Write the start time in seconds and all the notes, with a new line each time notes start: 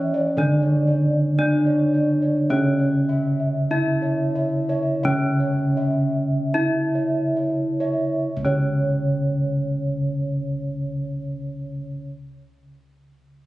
Already playing: E3 C#4 E4 C#5 E5
0.14 C#5 D5
0.37 C#3 D3 D4 D5
0.62 C#5 D5
0.87 D5
1.13 D5
1.39 D4 D5
1.66 C#5 D5
1.93 D5
2.21 C#5 D5
2.50 C#3 C#4 C#5 E5
2.79 C#5
3.09 E5
3.40 E5
3.71 D4 E4 E5
4.02 C#5 E5
4.35 C#5 E5
4.69 C#5 E5
5.03 C#3 C#4 C#5 E5
5.40 C#5
5.77 E5
6.15 E5
6.54 D4 E4 E5
6.95 C#5 E5
7.37 C#5 E5
7.80 C#5 E5
8.37 C#2
8.45 C#3 C#4 C#5